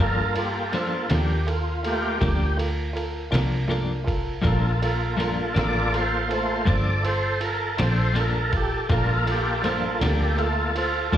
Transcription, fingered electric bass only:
0, 0, Header, 1, 2, 480
1, 0, Start_track
1, 0, Key_signature, -2, "minor"
1, 0, Tempo, 742574
1, 2871, Time_signature, 12, 3, 24, 8
1, 7224, End_track
2, 0, Start_track
2, 0, Title_t, "Fingered electric bass"
2, 0, Program_c, 0, 33
2, 0, Note_on_c, 0, 43, 85
2, 689, Note_off_c, 0, 43, 0
2, 715, Note_on_c, 0, 39, 80
2, 1411, Note_off_c, 0, 39, 0
2, 1433, Note_on_c, 0, 38, 86
2, 2130, Note_off_c, 0, 38, 0
2, 2149, Note_on_c, 0, 36, 92
2, 2848, Note_off_c, 0, 36, 0
2, 2874, Note_on_c, 0, 34, 78
2, 3571, Note_off_c, 0, 34, 0
2, 3594, Note_on_c, 0, 33, 89
2, 4291, Note_off_c, 0, 33, 0
2, 4313, Note_on_c, 0, 31, 91
2, 5011, Note_off_c, 0, 31, 0
2, 5037, Note_on_c, 0, 34, 90
2, 5734, Note_off_c, 0, 34, 0
2, 5753, Note_on_c, 0, 34, 83
2, 6452, Note_off_c, 0, 34, 0
2, 6472, Note_on_c, 0, 38, 88
2, 7172, Note_off_c, 0, 38, 0
2, 7196, Note_on_c, 0, 41, 85
2, 7224, Note_off_c, 0, 41, 0
2, 7224, End_track
0, 0, End_of_file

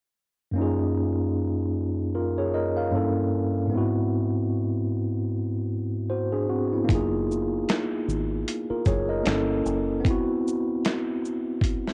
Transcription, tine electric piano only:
0, 0, Header, 1, 2, 480
1, 0, Start_track
1, 0, Key_signature, 6, "major"
1, 0, Tempo, 789474
1, 347, Time_signature, 4, 2, 24, 8
1, 7255, End_track
2, 0, Start_track
2, 0, Title_t, "Tine electric piano"
2, 0, Program_c, 0, 4
2, 313, Note_on_c, 0, 42, 70
2, 325, Note_on_c, 0, 58, 67
2, 339, Note_on_c, 0, 61, 68
2, 351, Note_on_c, 0, 63, 71
2, 363, Note_on_c, 0, 65, 62
2, 375, Note_on_c, 0, 68, 77
2, 460, Control_c, 0, 64, 127
2, 1296, Note_off_c, 0, 65, 0
2, 1302, Note_off_c, 0, 68, 0
2, 1307, Note_on_c, 0, 70, 56
2, 1310, Note_on_c, 0, 65, 50
2, 1439, Note_off_c, 0, 70, 0
2, 1440, Note_off_c, 0, 65, 0
2, 1447, Note_on_c, 0, 73, 59
2, 1450, Note_on_c, 0, 68, 52
2, 1543, Note_off_c, 0, 73, 0
2, 1544, Note_off_c, 0, 68, 0
2, 1545, Note_on_c, 0, 75, 64
2, 1548, Note_on_c, 0, 70, 54
2, 1678, Note_off_c, 0, 75, 0
2, 1680, Note_off_c, 0, 70, 0
2, 1683, Note_on_c, 0, 77, 58
2, 1688, Note_on_c, 0, 70, 50
2, 1746, Note_off_c, 0, 42, 0
2, 1752, Note_off_c, 0, 58, 0
2, 1759, Note_off_c, 0, 61, 0
2, 1765, Note_off_c, 0, 63, 0
2, 1768, Note_on_c, 0, 43, 68
2, 1776, Note_on_c, 0, 58, 65
2, 1783, Note_on_c, 0, 61, 57
2, 1790, Note_on_c, 0, 64, 55
2, 1795, Control_c, 0, 64, 0
2, 1799, Note_on_c, 0, 69, 67
2, 1894, Control_c, 0, 64, 127
2, 1912, Note_off_c, 0, 77, 0
2, 1915, Note_off_c, 0, 70, 0
2, 2233, Note_on_c, 0, 44, 79
2, 2248, Note_on_c, 0, 59, 67
2, 2258, Note_off_c, 0, 43, 0
2, 2262, Note_off_c, 0, 58, 0
2, 2264, Note_on_c, 0, 60, 64
2, 2265, Note_off_c, 0, 61, 0
2, 2269, Note_off_c, 0, 64, 0
2, 2273, Note_off_c, 0, 69, 0
2, 2275, Control_c, 0, 64, 0
2, 2279, Note_on_c, 0, 64, 63
2, 2295, Note_on_c, 0, 66, 77
2, 2369, Control_c, 0, 64, 127
2, 3433, Note_off_c, 0, 59, 0
2, 3441, Note_off_c, 0, 60, 0
2, 3449, Note_off_c, 0, 64, 0
2, 3457, Note_off_c, 0, 66, 0
2, 3708, Note_on_c, 0, 72, 55
2, 3712, Note_on_c, 0, 66, 50
2, 3839, Note_off_c, 0, 72, 0
2, 3841, Note_off_c, 0, 66, 0
2, 3845, Note_on_c, 0, 68, 65
2, 3850, Note_on_c, 0, 62, 50
2, 3942, Note_off_c, 0, 68, 0
2, 3944, Note_off_c, 0, 62, 0
2, 3948, Note_on_c, 0, 66, 66
2, 3952, Note_on_c, 0, 60, 58
2, 4080, Note_off_c, 0, 66, 0
2, 4082, Note_off_c, 0, 60, 0
2, 4091, Note_on_c, 0, 64, 56
2, 4094, Note_on_c, 0, 59, 51
2, 4146, Note_off_c, 0, 44, 0
2, 4161, Note_on_c, 0, 58, 82
2, 4183, Note_on_c, 0, 63, 66
2, 4195, Control_c, 0, 64, 0
2, 4203, Note_on_c, 0, 65, 69
2, 4223, Note_on_c, 0, 68, 79
2, 4292, Control_c, 0, 64, 127
2, 4316, Note_off_c, 0, 64, 0
2, 4318, Note_off_c, 0, 59, 0
2, 5136, Note_off_c, 0, 65, 0
2, 5146, Note_off_c, 0, 68, 0
2, 5290, Note_on_c, 0, 70, 57
2, 5294, Note_on_c, 0, 65, 47
2, 5384, Note_off_c, 0, 70, 0
2, 5387, Note_off_c, 0, 65, 0
2, 5391, Note_on_c, 0, 73, 65
2, 5395, Note_on_c, 0, 68, 58
2, 5521, Note_off_c, 0, 73, 0
2, 5523, Note_off_c, 0, 68, 0
2, 5527, Note_on_c, 0, 75, 62
2, 5532, Note_on_c, 0, 70, 50
2, 5590, Note_off_c, 0, 58, 0
2, 5601, Note_off_c, 0, 63, 0
2, 5613, Note_on_c, 0, 58, 66
2, 5624, Note_on_c, 0, 61, 68
2, 5634, Control_c, 0, 64, 0
2, 5634, Note_on_c, 0, 64, 64
2, 5645, Note_on_c, 0, 69, 77
2, 5744, Control_c, 0, 64, 127
2, 5755, Note_off_c, 0, 75, 0
2, 5757, Note_off_c, 0, 70, 0
2, 6081, Note_on_c, 0, 59, 72
2, 6100, Note_off_c, 0, 58, 0
2, 6102, Note_on_c, 0, 60, 66
2, 6106, Note_off_c, 0, 61, 0
2, 6111, Note_off_c, 0, 64, 0
2, 6116, Note_off_c, 0, 69, 0
2, 6116, Control_c, 0, 64, 0
2, 6123, Note_on_c, 0, 64, 64
2, 6144, Note_on_c, 0, 66, 88
2, 6220, Control_c, 0, 64, 127
2, 7255, Note_off_c, 0, 59, 0
2, 7255, Note_off_c, 0, 60, 0
2, 7255, Note_off_c, 0, 64, 0
2, 7255, Note_off_c, 0, 66, 0
2, 7255, End_track
0, 0, End_of_file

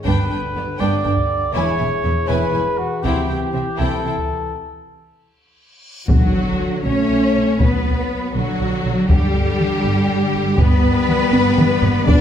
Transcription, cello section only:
0, 0, Header, 1, 2, 480
1, 0, Start_track
1, 0, Tempo, 497512
1, 56, Time_signature, 6, 3, 24, 8
1, 3416, Tempo, 507614
1, 6776, Tempo, 497925
1, 11707, End_track
2, 0, Start_track
2, 0, Title_t, "Cello section"
2, 0, Program_c, 0, 48
2, 58, Note_on_c, 0, 43, 68
2, 135, Note_off_c, 0, 43, 0
2, 299, Note_on_c, 0, 43, 44
2, 376, Note_off_c, 0, 43, 0
2, 537, Note_on_c, 0, 43, 49
2, 614, Note_off_c, 0, 43, 0
2, 779, Note_on_c, 0, 43, 64
2, 857, Note_off_c, 0, 43, 0
2, 1012, Note_on_c, 0, 43, 43
2, 1089, Note_off_c, 0, 43, 0
2, 1494, Note_on_c, 0, 40, 68
2, 1572, Note_off_c, 0, 40, 0
2, 1726, Note_on_c, 0, 40, 46
2, 1803, Note_off_c, 0, 40, 0
2, 1971, Note_on_c, 0, 40, 49
2, 2048, Note_off_c, 0, 40, 0
2, 2211, Note_on_c, 0, 40, 63
2, 2288, Note_off_c, 0, 40, 0
2, 2443, Note_on_c, 0, 40, 45
2, 2520, Note_off_c, 0, 40, 0
2, 2933, Note_on_c, 0, 48, 65
2, 3010, Note_off_c, 0, 48, 0
2, 3174, Note_on_c, 0, 48, 42
2, 3251, Note_off_c, 0, 48, 0
2, 3409, Note_on_c, 0, 48, 44
2, 3485, Note_off_c, 0, 48, 0
2, 3653, Note_on_c, 0, 48, 54
2, 3728, Note_off_c, 0, 48, 0
2, 3893, Note_on_c, 0, 48, 38
2, 3969, Note_off_c, 0, 48, 0
2, 5816, Note_on_c, 0, 54, 70
2, 6501, Note_off_c, 0, 54, 0
2, 6543, Note_on_c, 0, 61, 79
2, 7257, Note_on_c, 0, 59, 67
2, 7260, Note_off_c, 0, 61, 0
2, 7981, Note_off_c, 0, 59, 0
2, 7981, Note_on_c, 0, 54, 72
2, 8692, Note_off_c, 0, 54, 0
2, 8702, Note_on_c, 0, 55, 85
2, 10141, Note_on_c, 0, 59, 96
2, 10147, Note_off_c, 0, 55, 0
2, 11546, Note_off_c, 0, 59, 0
2, 11579, Note_on_c, 0, 62, 105
2, 11707, Note_off_c, 0, 62, 0
2, 11707, End_track
0, 0, End_of_file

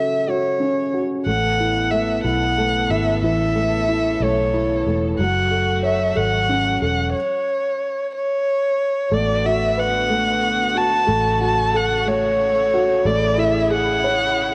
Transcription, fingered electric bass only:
0, 0, Header, 1, 2, 480
1, 0, Start_track
1, 0, Tempo, 654308
1, 927, Time_signature, 6, 3, 24, 8
1, 10669, End_track
2, 0, Start_track
2, 0, Title_t, "Fingered electric bass"
2, 0, Program_c, 0, 33
2, 926, Note_on_c, 0, 33, 73
2, 1617, Note_off_c, 0, 33, 0
2, 1647, Note_on_c, 0, 35, 64
2, 2098, Note_off_c, 0, 35, 0
2, 2123, Note_on_c, 0, 32, 66
2, 2350, Note_off_c, 0, 32, 0
2, 2365, Note_on_c, 0, 33, 71
2, 3056, Note_off_c, 0, 33, 0
2, 3083, Note_on_c, 0, 35, 64
2, 3536, Note_off_c, 0, 35, 0
2, 3568, Note_on_c, 0, 28, 67
2, 3793, Note_off_c, 0, 28, 0
2, 3805, Note_on_c, 0, 30, 73
2, 4497, Note_off_c, 0, 30, 0
2, 4528, Note_on_c, 0, 32, 67
2, 4978, Note_off_c, 0, 32, 0
2, 5004, Note_on_c, 0, 28, 64
2, 5231, Note_off_c, 0, 28, 0
2, 6688, Note_on_c, 0, 33, 80
2, 8100, Note_off_c, 0, 33, 0
2, 8132, Note_on_c, 0, 33, 89
2, 9543, Note_off_c, 0, 33, 0
2, 9574, Note_on_c, 0, 33, 90
2, 10669, Note_off_c, 0, 33, 0
2, 10669, End_track
0, 0, End_of_file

